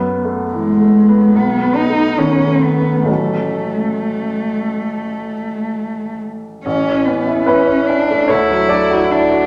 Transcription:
Already playing: F#2 B3
0.25 A3
0.53 E3 G#3
0.81 A3
1.08 B3
1.35 B1 B3
1.63 B3
1.76 D#4
1.89 A3
2.18 D#3 C#4
2.47 A3
2.63 B3
2.77 B3
3.03 A1 F#3 A3 C#4
3.08 A3
6.64 A1 C#4
6.87 E3
7.05 B3 C#4
7.27 E4
7.47 C#4 E4 B4
7.68 E4
7.88 C#4 D4
8.10 A3
8.28 D2 E4 A4 C#5
8.50 F#3
8.69 D4 A4 D5
8.91 F#4
9.11 D4 E4
9.31 F#4

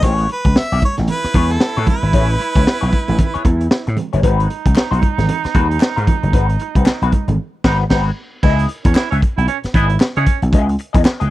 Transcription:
0.02 A1 B3 E4 G#4 C#5, kick, closed hi-hat, muted conga
0.18 closed hi-hat
0.29 B4, closed hi-hat, muted conga
0.45 C#2, muted clean electric guitar stroke, kick, closed hi-hat
0.56 E5, muted clean electric guitar stroke, snare
0.71 B1 B3 E4 G#4 D#5, closed hi-hat
0.82 C#5, kick, closed hi-hat, muted conga, high conga
0.97 A1, muted clean electric guitar stroke, snare, closed hi-hat, low conga
1.08 E4 B4, muted clean electric guitar stroke, closed hi-hat, muted conga, low conga
1.23 muted slap bass stroke, muted clean electric guitar stroke, snare, closed hi-hat
1.34 E2 B3 E4 G#4 C#5, kick, closed hi-hat, high conga
1.50 A4, muted clean electric guitar stroke, closed hi-hat
1.60 muted clean electric guitar stroke, snare, muted conga
1.76 A2 B3 E4 G#4 C#5, closed hi-hat
1.87 B4, kick, closed hi-hat, muted conga, high conga, low conga
2.03 G#1, muted clean electric guitar stroke, closed hi-hat
2.13 A1 B3 E4 G#4 C#5, kick, closed hi-hat
2.30 muted clean electric guitar stroke, closed hi-hat
2.40 muted clean electric guitar stroke, closed hi-hat, muted conga
2.55 C#2 B3 E4 G#4 C#5, kick, closed hi-hat
2.67 snare, muted conga
2.81 B1 B3 E4 G#4 C#5, closed hi-hat
2.93 kick, closed hi-hat, high conga
3.08 A1, muted clean electric guitar stroke, closed hi-hat, low conga
3.18 muted clean electric guitar stroke, kick, closed hi-hat, low conga
3.34 B3 E4 G#4 C#5, muted slap bass stroke, closed hi-hat
3.45 E2, kick, closed hi-hat, muted conga, high conga
3.61 muted clean electric guitar stroke, closed hi-hat
3.71 muted clean electric guitar stroke, snare
3.87 A2, muted clean electric guitar stroke, closed hi-hat
3.97 closed hi-hat, high conga, low conga
4.13 F#1 B3 E4 G#4 C#5, closed hi-hat
4.23 G#1 G#3 C4 D#4 F#4 B4, kick, closed hi-hat, muted conga
4.40 closed hi-hat
4.50 closed hi-hat, muted conga
4.65 C2, muted clean electric guitar stroke, kick, closed hi-hat
4.76 muted clean electric guitar stroke, snare, clap
4.91 B1 G#3 C4 F#4 C5, closed hi-hat
5.02 muted clean electric guitar stroke, kick, closed hi-hat, muted conga, high conga
5.18 G#1, muted clean electric guitar stroke, snare, closed hi-hat, low conga
5.29 muted clean electric guitar stroke, closed hi-hat, muted conga, low conga
5.44 muted clean electric guitar stroke, muted slap bass stroke, snare, closed hi-hat
5.54 D#2 G#3 C4 F#4 B4, kick, closed hi-hat, muted conga, high conga
5.70 muted clean electric guitar stroke, closed hi-hat
5.80 muted clean electric guitar stroke, snare, clap
5.96 G#2 G#3 C4 F#4 B4, closed hi-hat
6.06 muted clean electric guitar stroke, kick, closed hi-hat, muted conga, high conga, low conga
6.23 F#1, muted clean electric guitar stroke, closed hi-hat
6.33 G#1 G#3 C4 F#4 B4, kick, closed hi-hat
6.49 muted clean electric guitar stroke, closed hi-hat
6.59 muted clean electric guitar stroke, closed hi-hat, muted conga
6.75 C2 G#3 C4 F#4 B4, kick, closed hi-hat
6.86 muted clean electric guitar stroke, snare, clap, muted conga
7.02 B1 G#3 C4 F#4 B4, closed hi-hat
7.12 kick, closed hi-hat, muted conga, high conga
7.28 G#1, muted clean electric guitar stroke, closed hi-hat, low conga
7.64 G#1 G#3 C4 D#4 F#4 B4, kick, snare, crash
7.90 G#1 G#3 C4 D#4 F#4 B4, kick, snare, crash
8.43 C#2 B3 E4 G#4 D#5, kick, crash
8.59 closed hi-hat
8.69 closed hi-hat
8.84 E2 C#4, muted clean electric guitar stroke, kick, closed hi-hat
8.95 E4, muted clean electric guitar stroke, snare, clap
9.11 C#2 B3 C#4 E4 G#4 E5, closed hi-hat
9.22 kick, closed hi-hat
9.37 B1 E4, muted clean electric guitar stroke, closed hi-hat
9.48 C#4, muted clean electric guitar stroke, closed hi-hat
9.64 muted slap bass stroke, muted clean electric guitar stroke, snare, closed hi-hat
9.74 G#1 B3 E4 G#4 D#5, kick, closed hi-hat
9.89 muted clean electric guitar stroke, closed hi-hat
10.00 muted clean electric guitar stroke, snare, clap
10.16 C#3 B3 C#4 E4 G#4 D#5, closed hi-hat
10.26 kick, closed hi-hat
10.42 B1, muted clean electric guitar stroke, closed hi-hat
10.53 C#2 B3 E4 G#4 D#5, kick, closed hi-hat
10.69 muted clean electric guitar stroke, closed hi-hat
10.79 muted clean electric guitar stroke, closed hi-hat
10.93 E2 B3 E4 G#4 D#5, kick, closed hi-hat
11.05 snare, clap
11.20 C#2 B3 E4 G#4 D#5, closed hi-hat

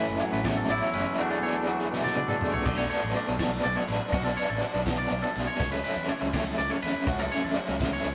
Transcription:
Already playing: A2 E3 F#3 A3 C#4 E4 B4
0.08 F#1
0.19 E3 F#3 A3 C#4 E4 C#5, ride
0.32 A1 B4
0.44 E2 E3 A3 C#4 E4 C#5, kick, snare, ride
0.57 A4
0.68 A1 E3 A3 C#4 E4 D5, ride
0.82 C#5
0.93 F#1 E3 A3 C#4 E4 B4, ride
1.18 E2 E3 F#3 A3 B3 D4 F#4 G#4
1.30 A4
1.42 E3 B3 D4 G#4 C#5
1.55 A4
1.67 E3 F#3 B3 D4 F#4 G#4
1.91 B2 E3 B3 D4 G#4, snare
2.04 D5, snare
2.15 E3 B3 D4 G#4, high tom
2.28 A4, mid tom
2.41 E3 A3 B3 D4 G#4, mid tom
2.53 C#5, floor tom
2.65 B1 B2 F#3 B3 D4 D5, kick, crash
2.78 C#5
2.90 B2 F#3 B3 D4 C#5, ride
3.03 A1
3.15 B2 F#3 B3 D4 D5, ride
3.27 B1 B4
3.39 B2 F#3 B3 D4 C#5, kick, snare, ride
3.51 A4
3.63 B1 B2 F#3 B3 D4 D5, ride
3.76 C#5
3.88 A1 B2 F#3 B3 D4 B4, ride
4.12 B1 B2 F#3 B3 D4 F#4, kick, ride
4.24 A4
4.37 B2 F#3 B3 D4 C#5, ride
4.49 A1 A4
4.61 B2 F#3 B3 D4 F#4, ride
4.74 B1
4.86 B2 F#3 B3 D4, kick, snare, ride
4.98 D5
5.10 B1 B2 F#3 B3 D4, ride
5.22 A4
5.35 B1 B2 F#3 B3 D4, ride
5.47 C#5
5.59 C#2 C#3 F#3 A3 C#4 C#5, kick, crash
5.72 B4
5.84 C#3 F#3 A3 C#4 B4, ride
5.96 E2
6.08 C#3 F#3 A3 C#4 C#5, ride
6.21 C#2 B4
6.33 C#3 F#3 A3 C#4 C#5, kick, snare, ride
6.45 A4
6.58 C#2 C#3 F#3 A3 C#4 D5, ride
6.70 C#5
6.82 E2 C#3 F#3 A3 C#4 B4, ride
7.06 C#2 C#3 F#3 A3 C#4 F#4, kick, ride
7.19 A4
7.31 C#3 F#3 A3 C#4 C#5, ride
7.44 E2 A4
7.55 C#3 F#3 A3 C#4 F#4, ride
7.69 C#2
7.79 C#3 F#3 A3 C#4, kick, snare, ride
7.93 C#5
8.04 C#2 C#3 F#3 A3 C#4, ride

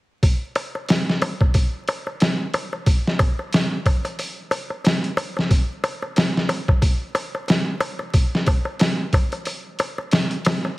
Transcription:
0.23 kick, open hi-hat, darbuka tek
0.55 open hi-hat, darbuka tek
0.75 darbuka tek
0.89 snare, open hi-hat, darbuka tek
1.10 snare
1.22 open hi-hat, darbuka tek
1.41 kick, darbuka tek
1.54 kick, open hi-hat, darbuka tek
1.88 open hi-hat, darbuka tek
2.07 darbuka tek
2.20 snare, open hi-hat, darbuka tek
2.54 open hi-hat, darbuka tek
2.73 darbuka tek
2.86 kick, open hi-hat, darbuka tek
3.07 snare
3.19 kick, open hi-hat, darbuka tek
3.39 darbuka tek
3.52 snare, open hi-hat, darbuka tek
3.86 kick, open hi-hat, darbuka tek
4.05 closed hi-hat, darbuka tek
4.19 open hi-hat, darbuka tek
4.51 open hi-hat, darbuka tek
4.70 darbuka tek
4.84 snare, open hi-hat, darbuka tek
5.04 closed hi-hat
5.17 open hi-hat, darbuka tek
5.37 snare, darbuka tek
5.50 kick, open hi-hat, darbuka tek
5.84 open hi-hat, darbuka tek
6.02 darbuka tek
6.16 snare, open hi-hat, darbuka tek
6.37 snare
6.49 open hi-hat, darbuka tek
6.68 kick, darbuka tek
6.82 kick, open hi-hat, darbuka tek
7.15 open hi-hat, darbuka tek
7.35 darbuka tek
7.48 snare, open hi-hat, darbuka tek
7.80 open hi-hat, darbuka tek
7.99 darbuka tek
8.14 kick, open hi-hat, darbuka tek
8.35 snare
8.46 kick, open hi-hat, darbuka tek
8.65 darbuka tek
8.79 snare, open hi-hat, darbuka tek
9.13 kick, open hi-hat, darbuka tek
9.32 closed hi-hat, darbuka tek
9.45 open hi-hat, darbuka tek
9.79 open hi-hat, darbuka tek
9.98 darbuka tek
10.11 snare, open hi-hat, darbuka tek
10.31 closed hi-hat
10.45 snare, open hi-hat, darbuka tek
10.65 darbuka tek

